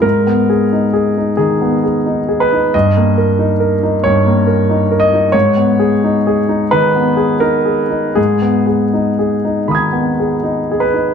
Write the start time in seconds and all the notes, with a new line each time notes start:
0.02 G#2 A#4
0.27 B3
0.49 G#4
0.72 D#4
0.93 G#4
1.18 D#4
1.37 D#3 G#4
1.62 B3
1.83 G#4
2.06 D#4
2.28 G#4
2.40 B4
2.53 D#4
2.74 G2 D#5
2.97 A#3
3.18 A#4
3.39 D#4
3.60 A#4
3.83 D#4
4.04 G2 C#5
4.27 A#3
4.47 A#4
4.69 D#4
4.91 A#4
5.00 D#5
5.13 D#4
5.32 G#2 C#5
5.57 B3
5.79 G#4
6.04 D#4
6.27 G#4
6.49 D#4
6.71 D#3 B4
6.96 B3
7.17 G#4
7.40 D#4 A#4
7.65 G#4
7.89 D#4
8.15 G#2 G#4
8.42 B3
8.66 G#4
8.94 D#4
9.19 G#4
9.45 D#4
9.68 D#3 B5 D#6
9.75 G#6
9.93 B3
10.20 G#4
10.44 D#4
10.71 G#4
10.80 B4
10.94 D#4